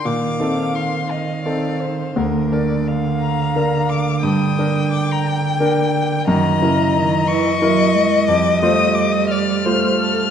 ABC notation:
X:1
M:6/8
L:1/16
Q:3/8=58
K:Fmix
V:1 name="Violin"
d'4 c'2 f6 | z6 b4 d'2 | e'4 d' b g6 | b6 _d'6 |
d'2 e'2 d' e' f'6 |]
V:2 name="Violin"
f6 e2 d2 c2 | B2 d2 f8 | g12 | e12- |
e6 d2 c2 A2 |]
V:3 name="Grand piano"
B,,2 [CEA]6 [CEA]4 | D,,2 [B,DB]6 [B,DB]4 | G,,2 [B,DB]6 [B,DB]4 | _G,,2 [B,_FB]6 [B,FB]4 |
F,,2 [A,Fc]6 [A,Fc]4 |]
V:4 name="Cello" clef=bass
E,12 | D,12- | D,12 | E,2 _D,2 E,2 _F,2 _G,2 _A,2 |
G,12 |]